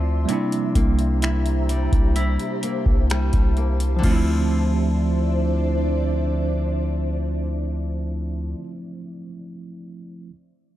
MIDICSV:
0, 0, Header, 1, 7, 480
1, 0, Start_track
1, 0, Key_signature, -1, "minor"
1, 0, Tempo, 937500
1, 147, Time_signature, 4, 2, 24, 8
1, 5514, End_track
2, 0, Start_track
2, 0, Title_t, "Ambient pad"
2, 0, Program_c, 0, 92
2, 0, Note_on_c, 0, 53, 86
2, 0, Note_on_c, 0, 74, 79
2, 0, Note_on_c, 0, 76, 75
2, 0, Note_on_c, 0, 84, 98
2, 128, Note_off_c, 0, 53, 0
2, 128, Note_off_c, 0, 74, 0
2, 128, Note_off_c, 0, 84, 0
2, 146, Note_on_c, 0, 67, 86
2, 146, Note_on_c, 0, 72, 76
2, 146, Note_on_c, 0, 82, 96
2, 1097, Note_off_c, 0, 82, 0
2, 1106, Note_on_c, 0, 81, 89
2, 2047, Note_off_c, 0, 67, 0
2, 2047, Note_off_c, 0, 72, 0
2, 2047, Note_off_c, 0, 76, 0
2, 2057, Note_off_c, 0, 81, 0
2, 2068, Note_on_c, 0, 62, 86
2, 2068, Note_on_c, 0, 72, 79
2, 2068, Note_on_c, 0, 76, 81
2, 2069, Note_on_c, 0, 74, 89
2, 4376, Note_off_c, 0, 62, 0
2, 4377, Note_off_c, 0, 72, 0
2, 4377, Note_off_c, 0, 74, 0
2, 4377, Note_off_c, 0, 76, 0
2, 5514, End_track
3, 0, Start_track
3, 0, Title_t, "Synth bell"
3, 0, Program_c, 1, 98
3, 0, Note_on_c, 1, 62, 71
3, 274, Note_off_c, 1, 62, 0
3, 1106, Note_on_c, 1, 64, 71
3, 2068, Note_on_c, 1, 65, 56
3, 2286, Note_off_c, 1, 64, 0
3, 4426, Note_off_c, 1, 65, 0
3, 5514, End_track
4, 0, Start_track
4, 0, Title_t, "Tine electric piano"
4, 0, Program_c, 2, 4
4, 0, Control_c, 2, 64, 127
4, 0, Note_on_c, 2, 53, 79
4, 0, Note_on_c, 2, 57, 73
4, 0, Note_on_c, 2, 60, 70
4, 0, Note_on_c, 2, 64, 81
4, 118, Note_off_c, 2, 53, 0
4, 124, Note_off_c, 2, 57, 0
4, 129, Note_on_c, 2, 55, 71
4, 130, Note_off_c, 2, 60, 0
4, 136, Note_off_c, 2, 64, 0
4, 142, Note_on_c, 2, 58, 69
4, 154, Control_c, 2, 64, 0
4, 155, Note_on_c, 2, 62, 70
4, 167, Note_on_c, 2, 64, 87
4, 245, Control_c, 2, 64, 127
4, 2031, Note_on_c, 2, 53, 82
4, 2038, Note_off_c, 2, 55, 0
4, 2044, Note_off_c, 2, 58, 0
4, 2050, Note_off_c, 2, 62, 0
4, 2056, Note_off_c, 2, 64, 0
4, 2056, Note_on_c, 2, 57, 74
4, 2075, Control_c, 2, 64, 0
4, 2081, Note_on_c, 2, 60, 74
4, 2106, Note_on_c, 2, 64, 88
4, 2152, Control_c, 2, 64, 127
4, 4389, Note_off_c, 2, 53, 0
4, 4415, Note_off_c, 2, 57, 0
4, 4440, Note_off_c, 2, 60, 0
4, 4465, Note_off_c, 2, 64, 0
4, 5274, Control_c, 2, 64, 0
4, 5514, End_track
5, 0, Start_track
5, 0, Title_t, "Nylon-string guitar"
5, 0, Program_c, 3, 24
5, 0, Note_on_c, 3, 50, 81
5, 0, Note_on_c, 3, 53, 67
5, 0, Note_on_c, 3, 60, 63
5, 0, Note_on_c, 3, 64, 74
5, 144, Note_off_c, 3, 50, 0
5, 146, Note_on_c, 3, 48, 82
5, 195, Note_off_c, 3, 53, 0
5, 385, Note_off_c, 3, 60, 0
5, 387, Note_on_c, 3, 58, 59
5, 402, Note_off_c, 3, 64, 0
5, 627, Note_on_c, 3, 64, 70
5, 867, Note_on_c, 3, 55, 69
5, 1105, Note_off_c, 3, 64, 0
5, 1107, Note_on_c, 3, 64, 70
5, 1341, Note_off_c, 3, 58, 0
5, 1348, Note_on_c, 3, 58, 60
5, 1582, Note_off_c, 3, 55, 0
5, 1588, Note_on_c, 3, 55, 62
5, 1821, Note_off_c, 3, 58, 0
5, 1827, Note_on_c, 3, 58, 64
5, 2038, Note_off_c, 3, 48, 0
5, 2040, Note_on_c, 3, 50, 84
5, 2073, Note_off_c, 3, 55, 0
5, 2075, Note_on_c, 3, 53, 84
5, 2100, Note_off_c, 3, 58, 0
5, 2102, Note_on_c, 3, 60, 85
5, 2126, Note_off_c, 3, 64, 0
5, 2128, Note_on_c, 3, 64, 91
5, 4420, Note_off_c, 3, 50, 0
5, 4454, Note_off_c, 3, 53, 0
5, 4481, Note_off_c, 3, 60, 0
5, 4507, Note_off_c, 3, 64, 0
5, 5514, End_track
6, 0, Start_track
6, 0, Title_t, "808-style bass"
6, 0, Program_c, 4, 38
6, 0, Note_on_c, 4, 38, 102
6, 133, Note_off_c, 4, 38, 0
6, 387, Note_on_c, 4, 36, 104
6, 966, Note_off_c, 4, 36, 0
6, 986, Note_on_c, 4, 36, 106
6, 1217, Note_off_c, 4, 36, 0
6, 1465, Note_on_c, 4, 36, 104
6, 1696, Note_off_c, 4, 36, 0
6, 1708, Note_on_c, 4, 36, 101
6, 2053, Note_off_c, 4, 36, 0
6, 2067, Note_on_c, 4, 38, 104
6, 4376, Note_off_c, 4, 38, 0
6, 5514, End_track
7, 0, Start_track
7, 0, Title_t, "Drums"
7, 147, Note_on_c, 9, 42, 73
7, 198, Note_off_c, 9, 42, 0
7, 268, Note_on_c, 9, 42, 56
7, 319, Note_off_c, 9, 42, 0
7, 386, Note_on_c, 9, 36, 88
7, 386, Note_on_c, 9, 42, 71
7, 437, Note_off_c, 9, 36, 0
7, 437, Note_off_c, 9, 42, 0
7, 505, Note_on_c, 9, 42, 55
7, 556, Note_off_c, 9, 42, 0
7, 626, Note_on_c, 9, 42, 76
7, 634, Note_on_c, 9, 26, 119
7, 677, Note_off_c, 9, 42, 0
7, 685, Note_off_c, 9, 26, 0
7, 746, Note_on_c, 9, 42, 57
7, 797, Note_off_c, 9, 42, 0
7, 867, Note_on_c, 9, 42, 65
7, 918, Note_off_c, 9, 42, 0
7, 985, Note_on_c, 9, 36, 99
7, 987, Note_on_c, 9, 42, 59
7, 1036, Note_off_c, 9, 36, 0
7, 1038, Note_off_c, 9, 42, 0
7, 1105, Note_on_c, 9, 42, 73
7, 1156, Note_off_c, 9, 42, 0
7, 1226, Note_on_c, 9, 42, 49
7, 1277, Note_off_c, 9, 42, 0
7, 1346, Note_on_c, 9, 42, 77
7, 1397, Note_off_c, 9, 42, 0
7, 1464, Note_on_c, 9, 36, 84
7, 1515, Note_off_c, 9, 36, 0
7, 1587, Note_on_c, 9, 42, 67
7, 1594, Note_on_c, 9, 26, 114
7, 1594, Note_on_c, 9, 37, 91
7, 1638, Note_off_c, 9, 42, 0
7, 1645, Note_off_c, 9, 26, 0
7, 1645, Note_off_c, 9, 37, 0
7, 1704, Note_on_c, 9, 42, 53
7, 1707, Note_on_c, 9, 36, 91
7, 1756, Note_off_c, 9, 42, 0
7, 1759, Note_off_c, 9, 36, 0
7, 1827, Note_on_c, 9, 42, 36
7, 1878, Note_off_c, 9, 42, 0
7, 1946, Note_on_c, 9, 42, 58
7, 1998, Note_off_c, 9, 42, 0
7, 2066, Note_on_c, 9, 49, 90
7, 2067, Note_on_c, 9, 36, 113
7, 2117, Note_off_c, 9, 49, 0
7, 2118, Note_off_c, 9, 36, 0
7, 5514, End_track
0, 0, End_of_file